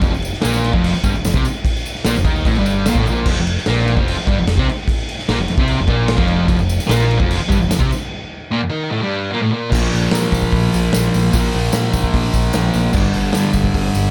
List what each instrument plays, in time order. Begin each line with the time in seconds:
0.01 picked electric bass F1, distorted electric guitar F2 F3, kick, tambourine, crash
0.12 picked electric bass F1, distorted electric guitar F2, tambourine
0.22 tambourine, crash
0.33 snare
0.41 picked electric bass A#1, distorted electric guitar A#2 A#3, snare, tambourine, crash
0.54 tambourine
0.64 crash
0.72 picked electric bass F1, distorted electric guitar F2 F3, kick
0.84 crash
0.94 muted distorted electric guitar stroke, muted picked electric bass stroke, tambourine
1.03 picked electric bass G1, distorted electric guitar G2 G3, kick, tambourine, crash
1.15 picked electric bass F1, distorted electric guitar F2, tambourine
1.25 picked electric bass F1, distorted electric guitar F2, snare, tambourine, crash
1.34 picked electric bass C2, distorted electric guitar C3 C4, kick
1.45 tambourine, crash
1.65 kick, tambourine, crash
1.77 tambourine
1.85 tambourine, crash
1.95 snare
2.05 picked electric bass A#1, distorted electric guitar A#2 A#3, snare, tambourine, crash
2.16 picked electric bass F1, distorted electric guitar F2, tambourine
2.24 picked electric bass D#2, distorted electric guitar D#3 D#4, kick, crash
2.36 tambourine
2.45 picked electric bass A1, distorted electric guitar A2 A3, kick, tambourine, crash
2.55 picked electric bass G1, distorted electric guitar G2 G3, tambourine
2.66 tambourine, crash
2.86 picked electric bass A#1, distorted electric guitar A#2 A#3, snare, tambourine, crash
2.95 picked electric bass A1, distorted electric guitar A2 A3, kick
3.06 picked electric bass A#1, distorted electric guitar A#2 A#3, tambourine, crash
3.17 tambourine
3.26 picked electric bass F1, distorted electric guitar F2 F3, kick, crash
3.39 picked electric bass F1, distorted electric guitar F2
3.47 crash
3.57 snare
3.66 picked electric bass A#1, distorted electric guitar A#2 A#3, snare, crash
3.88 crash
3.95 picked electric bass F1, distorted electric guitar F2 F3, kick
4.08 crash
4.17 muted distorted electric guitar stroke, muted picked electric bass stroke
4.26 picked electric bass G1, distorted electric guitar G2 G3, kick, crash
4.38 picked electric bass F1, distorted electric guitar F2
4.47 picked electric bass F1, distorted electric guitar F2, snare, crash
4.58 picked electric bass C2, distorted electric guitar C3 C4, kick
4.69 crash
4.88 kick, crash
5.09 crash
5.19 snare
5.28 picked electric bass A#1, distorted electric guitar A#2 A#3, snare, crash
5.39 picked electric bass F1, distorted electric guitar F2
5.48 picked electric bass F1, distorted electric guitar F2, crash
5.58 picked electric bass C2, distorted electric guitar C3 C4, kick
5.68 crash
5.79 picked electric bass F1, distorted electric guitar F2
5.87 picked electric bass A#1, distorted electric guitar A#2 A#3, kick, crash
6.08 snare, crash
6.17 picked electric bass F1, distorted electric guitar F2 F3, kick
6.28 crash
6.48 picked electric bass F1, distorted electric guitar F2 F3, kick, tambourine, crash
6.59 picked electric bass F1, distorted electric guitar F2, tambourine
6.69 tambourine, crash
6.79 snare, tambourine
6.87 picked electric bass A#1, distorted electric guitar A#2 A#3, snare, crash
6.91 tambourine
7.11 crash
7.18 picked electric bass F1, distorted electric guitar F2 F3, kick
7.31 tambourine, crash
7.38 muted distorted electric guitar stroke
7.43 muted picked electric bass stroke
7.49 picked electric bass G1, distorted electric guitar G2 G3, kick, tambourine, crash
7.60 picked electric bass F1, distorted electric guitar F2, tambourine
7.69 picked electric bass F1, distorted electric guitar F2, snare, tambourine, crash
7.79 picked electric bass C2, distorted electric guitar C3 C4, kick
7.91 tambourine, crash
8.51 distorted electric guitar A#2 A#3
8.61 distorted electric guitar F2
8.69 distorted electric guitar D#3 D#4
8.91 distorted electric guitar A2 A3
9.01 distorted electric guitar G2 G3
9.31 distorted electric guitar A#2 A#3
9.41 distorted electric guitar A2 A3
9.52 distorted electric guitar A#2 A#3
9.71 picked electric bass A#1, distorted electric guitar A#2 F3, kick, crash
9.75 distorted electric guitar A#3, tambourine
9.86 tambourine
9.92 picked electric bass A#1, open hi-hat, tambourine
10.06 tambourine
10.11 picked electric bass A#2, snare, open hi-hat, tambourine
10.25 tambourine
10.32 picked electric bass A#1, kick, open hi-hat, tambourine
10.42 kick, tambourine
10.51 picked electric bass A#1, kick, open hi-hat, tambourine
10.72 picked electric bass A#1, open hi-hat, tambourine
10.93 picked electric bass A#1, snare, open hi-hat, tambourine
11.14 picked electric bass A#1, open hi-hat, tambourine
11.31 picked electric bass A#1, distorted electric guitar A#2 F3, kick, open hi-hat, tambourine
11.37 distorted electric guitar A#3
11.54 picked electric bass A#1, open hi-hat, tambourine
11.65 tambourine
11.73 picked electric bass A#2, snare, open hi-hat, tambourine
11.85 tambourine
11.93 picked electric bass A#1, kick, open hi-hat, tambourine
12.04 kick
12.14 picked electric bass A#1, kick, open hi-hat, tambourine
12.33 picked electric bass A#1, kick, open hi-hat, tambourine
12.45 tambourine
12.53 picked electric bass A#1, snare, open hi-hat, tambourine
12.74 picked electric bass A#1, open hi-hat, tambourine
12.93 picked electric bass G1, distorted electric guitar G2 D3, kick, crash, tambourine
12.98 distorted electric guitar G3
13.04 tambourine
13.13 picked electric bass G1, open hi-hat, tambourine
13.25 tambourine
13.33 picked electric bass G2, snare, open hi-hat, tambourine
13.45 tambourine
13.53 picked electric bass G1, kick, open hi-hat, tambourine
13.64 kick
13.74 picked electric bass G1, kick, open hi-hat, tambourine
13.94 picked electric bass G1, open hi-hat, tambourine
14.05 tambourine